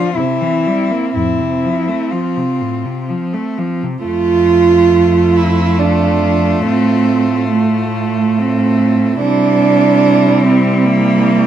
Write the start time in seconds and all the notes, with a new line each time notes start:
Already playing: F3 D4 F4
0.16 C3 C4 E4
0.41 E3
0.67 G3
0.91 A#3
1.14 F2 A2 E4
1.41 C3
1.64 F3
1.88 A3
2.10 F3 F4
2.37 C3
2.61 A2
2.85 C3
3.09 F3
3.34 A3
3.58 F3
3.83 C3
4.03 F2 F4
4.07 A3
5.37 E4
5.79 D4
6.66 A2 C4
7.53 A3
8.39 C4
9.20 C3 G3 D4 E4
10.44 C4
10.84 A#3